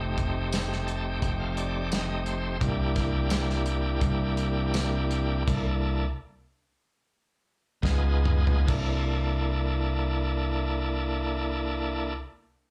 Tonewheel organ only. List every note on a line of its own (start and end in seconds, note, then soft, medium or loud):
0.00 2.57 A3 medium
0.00 2.57 C4 medium
0.00 2.57 D#4 medium
0.00 2.58 G4 medium
0.87 1.04 A5 medium
1.05 1.20 G5 medium
1.22 1.38 G5 medium
1.39 1.55 F5 medium
1.57 1.89 D5 medium
1.92 2.24 D#5 medium
2.26 2.59 C5 medium
2.60 5.43 A#3 medium
2.60 5.43 D4 medium
2.60 5.44 E4 medium
2.60 5.44 G4 medium
5.46 6.06 A#3 medium
5.46 6.07 D4 medium
5.46 6.07 E4 medium
5.46 6.07 A4 medium
7.82 8.68 B3 medium
7.82 8.68 D#4 medium
7.82 8.68 F4 medium
7.82 8.68 G#4 medium
8.67 12.14 A#3 medium
8.67 12.14 D4 medium
8.67 12.13 E4 medium
8.67 12.14 A4 medium